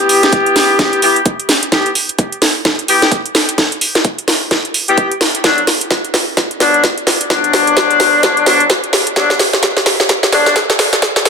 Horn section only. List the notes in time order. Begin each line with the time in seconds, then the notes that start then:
Already playing: B3 E4 G4
1.02 B3 E4 G4
1.72 B3 E4 G4
2.88 B3 E4 G4
4.88 B3 E4 G4
5.44 F#3 B3 D4
6.60 F#3 B3 D4
7.30 F#3 B3 D4
8.46 F#3 B3 D4
9.16 F#3 B3 D4
10.32 F#3 B3 D4